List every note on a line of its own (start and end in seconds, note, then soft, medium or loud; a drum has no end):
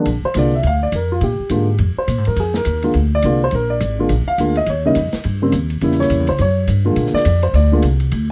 0.05 0.23 A#1 medium
0.05 ride medium
0.23 0.36 C5 medium
0.23 muted upright bass stroke soft
0.34 0.63 C2 medium
0.34 0.51 D3 medium
0.34 0.51 G#3 medium
0.34 0.52 A#3 medium
0.34 0.52 F4 medium
0.34 hi-hat pedal medium
0.34 ride medium
0.38 0.54 D5 medium
0.55 0.65 E5 medium
0.63 0.92 D2 medium
0.63 0.82 F5 medium
0.63 ride medium
0.83 0.93 D5 medium
0.92 1.20 F2 medium
0.92 1.11 A#4 medium
0.92 hi-hat pedal soft
0.92 ride medium
1.12 1.22 F4 medium
1.21 1.38 A#2 medium
1.21 1.76 G4 medium
1.21 ride medium
1.40 muted upright bass stroke soft
1.49 1.78 G#2 medium
1.49 1.66 D3 medium
1.49 1.66 G#3 medium
1.49 1.66 A#3 soft
1.49 1.67 F4 medium
1.49 hi-hat pedal medium
1.49 ride medium
1.78 1.95 F2 medium
1.78 ride medium
1.97 2.24 C5 medium
1.97 muted upright bass stroke soft
2.08 2.18 A#2 medium
2.08 hi-hat pedal medium
2.08 ride medium
2.18 2.27 G#2 medium
2.25 2.36 F2 medium
2.25 2.37 A#4 medium
2.25 ride soft
2.36 2.64 F2 medium
2.36 2.55 G#4 medium
2.36 ride medium
2.54 2.93 A#4 medium
2.54 snare medium
2.65 2.94 D#2 medium
2.65 hi-hat pedal medium
2.65 ride medium
2.82 2.93 D3 medium
2.82 2.93 G#3 medium
2.82 2.94 A#3 medium
2.82 2.94 F4 medium
2.82 ride soft
2.94 3.22 D2 medium
2.94 ride medium
3.15 3.40 D5 loud
3.22 3.51 C2 medium
3.22 3.39 D3 medium
3.22 3.39 G#3 soft
3.22 3.40 A#3 medium
3.22 3.40 F4 medium
3.22 hi-hat pedal medium
3.22 ride medium
3.44 3.53 C5 medium
3.51 3.80 A#1 medium
3.51 3.70 A#4 medium
3.51 ride medium
3.70 4.07 D5 medium
3.80 4.09 G#1 medium
3.80 hi-hat pedal medium
3.80 ride medium
3.99 4.09 D3 medium
3.99 4.09 G#3 medium
3.99 4.09 A#3 medium
3.99 4.09 F4 medium
4.09 4.26 A#1 medium
4.09 ride medium
4.27 4.54 F5 medium
4.27 muted upright bass stroke soft
4.38 4.66 D2 medium
4.38 4.55 D3 medium
4.38 4.55 G#3 soft
4.38 4.55 A#3 soft
4.38 4.55 F4 medium
4.38 hi-hat pedal medium
4.38 ride medium
4.55 4.67 D#5 medium
4.55 ride soft
4.66 4.95 D#2 medium
4.66 4.85 C#5 medium
4.66 ride medium
4.86 4.95 C#3 medium
4.86 4.95 G3 medium
4.86 4.96 A#3 medium
4.86 4.96 D#4 medium
4.86 5.23 D#5 medium
4.95 5.12 F2 medium
4.95 hi-hat pedal medium
4.95 ride medium
5.12 muted upright bass stroke soft
5.12 snare medium
5.12 ride soft
5.24 5.51 G2 medium
5.24 ride medium
5.42 5.52 C#3 medium
5.42 5.52 G3 medium
5.42 5.52 A#3 medium
5.42 5.53 C4 medium
5.52 5.81 D#2 medium
5.52 hi-hat pedal medium
5.52 ride medium
5.70 ride soft
5.81 6.10 E2 medium
5.81 6.25 C#3 medium
5.81 6.25 G3 medium
5.81 6.25 A#3 medium
5.81 6.26 E4 medium
5.81 ride medium
5.91 snare soft
6.00 6.27 C#5 medium
6.00 snare soft
6.10 6.20 F2 medium
6.10 hi-hat pedal medium
6.10 ride medium
6.20 6.29 E2 soft
6.27 6.39 C#2 medium
6.27 6.40 C5 medium
6.27 ride soft
6.38 6.67 F#2 medium
6.38 6.67 C#5 medium
6.38 ride medium
6.67 6.96 G2 medium
6.67 hi-hat pedal medium
6.67 ride medium
6.85 7.23 D3 medium
6.85 7.23 G#3 medium
6.85 7.24 A#3 medium
6.85 7.24 F4 medium
6.96 7.13 A#2 medium
6.96 ride medium
7.06 snare soft
7.13 7.41 D5 loud
7.13 muted upright bass stroke soft
7.13 snare soft
7.25 7.53 F2 medium
7.25 hi-hat pedal medium
7.25 ride medium
7.42 7.54 C5 medium
7.42 ride soft
7.53 7.82 D2 medium
7.53 7.82 D5 medium
7.53 ride medium
7.72 7.82 D3 medium
7.72 7.83 G#3 medium
7.72 7.83 A#3 medium
7.72 7.83 F4 medium
7.82 8.11 C2 medium
7.82 hi-hat pedal soft
7.82 ride medium
8.00 ride soft
8.11 8.31 D2 medium
8.11 ride medium